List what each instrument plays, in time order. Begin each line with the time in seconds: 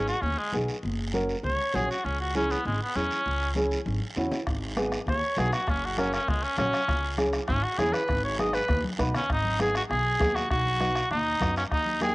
Already playing: upright bass G#1, nylon-string guitar B3 D#4 G#4
0.08 cor anglais F#4, short guiro
0.21 upright bass D#2, cor anglais C#4, high conga, low conga, long guiro
0.38 cor anglais G#3
0.53 upright bass B1, nylon-string guitar B3 D#4 G#4, high conga, low conga, short guiro
0.68 short guiro
0.83 upright bass F#1, high conga, low conga, long guiro
1.13 nylon-string guitar C#4 F#4 A#4, high conga, short guiro
1.29 short guiro
1.43 upright bass C#2, cor anglais C#5, high conga, low conga, long guiro
1.74 upright bass A#1, nylon-string guitar C#4 F#4 C#5, cor anglais G#4, high conga, low conga, short guiro
1.90 cor anglais F#4, short guiro
2.05 upright bass C#2, cor anglais C#4, high conga, long guiro
2.20 cor anglais F#4
2.35 nylon-string guitar C#4 E4 G#4, cor anglais C#4, high conga, short guiro
2.50 cor anglais B3, short guiro
2.65 upright bass G#1, cor anglais G#3, high conga, low conga, long guiro
2.82 cor anglais B3
2.95 upright bass E2, nylon-string guitar C#4 E4 G#4, cor anglais C#4, high conga, short guiro
3.11 short guiro
3.25 upright bass C#2, high conga, long guiro
3.55 nylon-string guitar C#4 E4 G#4, high conga, short guiro
3.71 short guiro
3.86 upright bass G#1, high conga, long guiro
4.16 upright bass E2, nylon-string guitar C#4 E4 F#4, low conga, short guiro
4.31 low conga, short guiro
4.47 upright bass G#1, bombo low, bombo rim, high conga, long guiro
4.76 nylon-string guitar B3 D#4 G#4, bombo rim, high conga, short guiro
4.92 bombo rim, short guiro
5.06 upright bass D#2, cor anglais C#5, bombo low, bombo rim, high conga, low conga, long guiro
5.37 upright bass B1, nylon-string guitar B3 D#4 F#4, cor anglais G#4, bombo rim, high conga, low conga, short guiro
5.53 cor anglais F#4, bombo rim, short guiro
5.67 upright bass F#1, cor anglais C#4, bombo low, bombo rim, high conga, low conga, long guiro
5.85 cor anglais F#4
5.97 nylon-string guitar C#4 F#4 A#4, cor anglais C#4, bombo rim, high conga, short guiro
6.13 cor anglais C#4, bombo rim, short guiro
6.28 upright bass C#2, cor anglais G#3, bombo low, bombo rim, high conga, low conga, long guiro
6.43 cor anglais C#4
6.57 upright bass A#1, cor anglais C#4, nylon-string guitar C#4 F#4 C#5, bombo rim, high conga, low conga, short guiro
6.73 bombo rim, short guiro
6.88 upright bass C#2, bombo low, bombo rim, high conga, low conga, long guiro
7.18 nylon-string guitar C#4 E4 G#4, bombo rim, high conga, short guiro
7.33 bombo rim, short guiro
7.48 upright bass G#1, cor anglais C#4, bombo low, bombo rim, high conga, low conga, long guiro
7.64 cor anglais F#4
7.78 upright bass E2, nylon-string guitar C#4 E4 G#4, cor anglais G#4, bombo rim, high conga, low conga, short guiro
7.93 cor anglais B4, bombo rim, short guiro
8.08 upright bass G#1, bombo low, bombo rim, high conga, low conga, long guiro
8.24 cor anglais C#5
8.39 nylon-string guitar B3 D#4 G#4, cor anglais D#5, bombo rim, high conga, short guiro
8.53 cor anglais B4, bombo rim, short guiro
8.68 upright bass D#2, bombo low, bombo rim, high conga, low conga, long guiro
8.84 high conga
8.98 upright bass B1, nylon-string guitar B3 D#4 B4, bombo low, bombo rim, short guiro
9.14 cor anglais C#4, bombo rim, low conga, short guiro
9.30 upright bass G#1, cor anglais D#4, bombo low, bombo rim, long guiro
9.44 high conga
9.59 nylon-string guitar B3 D#4 G#4, cor anglais G#4, bombo rim, high conga, short guiro
9.75 cor anglais F#4, bombo rim, short guiro
9.90 upright bass B1, cor anglais G#4, bombo rim, low conga, long guiro
10.19 upright bass D#2, nylon-string guitar B3 D#4 G#4, bombo low, bombo rim, high conga, short guiro
10.35 cor anglais F#4, bombo rim, short guiro
10.51 upright bass B1, cor anglais F#4, bombo low, bombo rim, long guiro
10.65 high conga
10.80 nylon-string guitar B3 D#4 F#4, bombo rim, high conga, short guiro
10.96 bombo rim, short guiro
11.11 upright bass D#2, cor anglais D#4, bombo rim, low conga, long guiro
11.41 upright bass F#2, nylon-string guitar B3 D#4 F#4, bombo low, bombo rim, high conga, low conga, short guiro
11.56 cor anglais C#4, bombo rim, short guiro
11.72 upright bass D#2, cor anglais D#4, bombo low, bombo rim, long guiro
11.86 high conga
12.01 nylon-string guitar A#3 D#4 G4, cor anglais G#4, bombo rim, high conga, short guiro